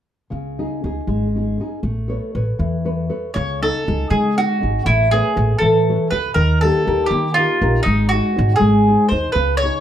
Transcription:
0.30 upright bass C#2, nylon-string guitar C#3
0.59 nylon-string guitar C#4 D#4 G#4
0.84 upright bass C#2, nylon-string guitar C#4 D#4 G#4
1.07 upright bass G#1, nylon-string guitar G#3
1.35 nylon-string guitar C#4 D#4 G#4
1.60 nylon-string guitar C#4 D#4 G#4
1.83 upright bass A1, nylon-string guitar A3
2.08 nylon-string guitar A4 B4 C#5
2.35 upright bass A1, nylon-string guitar A4 B4 C#5
2.59 upright bass E2, nylon-string guitar E3
2.85 nylon-string guitar A4 B4 C#5
3.09 nylon-string guitar A4 B4 C#5
3.34 upright bass C#2, nylon-string guitar C#3, mandolin C#5
3.62 nylon-string guitar C#4 D#4, mandolin A4
3.88 upright bass C#2, nylon-string guitar C#4 D#4 G#4
4.10 upright bass C#3, nylon-string guitar G#3, mandolin G#4
4.38 nylon-string guitar C#4 D#4 G#4, mandolin F#4
4.60 upright bass G#1, nylon-string guitar C#4 D#4 G#4
4.84 upright bass A1, nylon-string guitar A3, mandolin E4
5.11 nylon-string guitar A3 B4 C#5, mandolin G#4
5.35 upright bass A1, nylon-string guitar A4 B4 C#5
5.59 upright bass A2, nylon-string guitar E3, mandolin A4
5.89 nylon-string guitar A4 B4 C#5
6.11 upright bass C#2, nylon-string guitar A4 B4 C#5, mandolin B4
6.34 upright bass D#2, nylon-string guitar D#3, mandolin A#4
6.61 nylon-string guitar A#3 D#4 G4, mandolin A4
6.85 upright bass D#2, nylon-string guitar D#4 G4 A#4
7.06 mandolin G4
7.11 upright bass D#3, nylon-string guitar A#3
7.34 nylon-string guitar D#4 G4 A#4, mandolin F4
7.61 upright bass A#1, nylon-string guitar D#4 G4 A#4
7.83 upright bass G#1, nylon-string guitar G#3, mandolin D#4
8.09 mandolin F#4
8.13 nylon-string guitar D#4 G#4 C#5
8.36 upright bass G#1, nylon-string guitar D#4 G#4 C#5
8.56 nylon-string guitar G#3, mandolin G#4
8.61 upright bass G#1
8.88 nylon-string guitar D#4 G#4 C5
9.09 upright bass D#2, nylon-string guitar D#4 G#4 C5, mandolin C5
9.32 upright bass C#2, nylon-string guitar C#3, mandolin B4
9.57 mandolin C#5
9.63 nylon-string guitar C#4 D#4 G#4

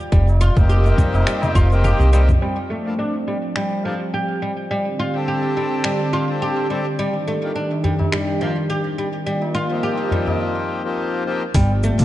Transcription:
Already playing: singing bowl F4 F5
0.12 upright bass F1, oud G3, kick, low conga, cabasa
0.28 tabla na, cabasa
0.41 oud F4, cabasa
0.55 upright bass F1, harmonium A#3 C4 D#4 G4, kick, tabla na, low conga, cabasa
0.69 oud G4, cabasa
0.86 tabla tin, cabasa
0.98 oud G3, kick, tabla ge, low conga, cabasa
1.14 upright bass F1, tabla na, cabasa
1.27 oud G3, finger snap, cabasa
1.42 tabla na, tabla tin, low conga, tabla ge, cabasa
1.55 upright bass F1, oud F4, kick, cabasa
1.71 harmonium A#3 C4 D#4 G4, cabasa
1.84 oud G4, low conga, cabasa
1.99 upright bass C2, cabasa
2.11 oud G3, harmonium A#3 C4 D#4 G4, cabasa
2.29 tabla ge, low conga, cabasa
2.42 analog synth pad F3 G4, oud G3, singing bowl C4 C5
2.70 oud A3
2.85 harmonium G2 A#3 D4 F4 A4
2.99 oud D4
3.28 oud G3
3.56 oud G3, finger snap
3.83 harmonium G2 A#3 D4 F4 A4, oud F3
4.14 oud G4
4.42 oud G3
4.71 analog synth pad D3 C4, oud G3
4.99 oud F4
5.13 harmonium C4 D4 G4 A4
5.28 oud G4
5.57 oud G3
5.84 oud G3, finger snap
6.13 oud F4
6.28 harmonium C4 D4 G4 A4
6.42 oud G4
6.69 oud G3, harmonium C4 D4 G4 A4
6.99 analog synth pad D#3 D4 G4, oud G3
7.28 oud A3
7.43 harmonium D#3 A#3 D4 F4 G4
7.56 oud D4
7.72 tabla tin
7.84 oud G3, tabla ge
7.99 tabla na, tabla ge
8.12 oud G3, finger snap
8.41 harmonium D#3 A#3 D4 F4 G4, oud F3, tabla tin
8.70 oud G4
8.98 oud G3
9.27 oud G3, analog synth pad A#3 F4
9.42 tabla na
9.55 oud F4
9.69 harmonium F3 A#3 C4 D#4 G4, tabla na
9.83 oud G4
10.00 tabla tin
10.11 oud G3, tabla ge
10.27 tabla na, tabla ge
10.84 harmonium F3 A#3 C4 D#4 G4
11.25 harmonium F3 A#3 C4 D#4 G4
11.54 upright bass G1, analog synth pad F3 G4, oud G3, kick, open hi-hat, low conga, cabasa
11.83 oud A3, cabasa
11.99 upright bass G1, harmonium A#3 D4 F4 A4, open hi-hat, low conga, cabasa

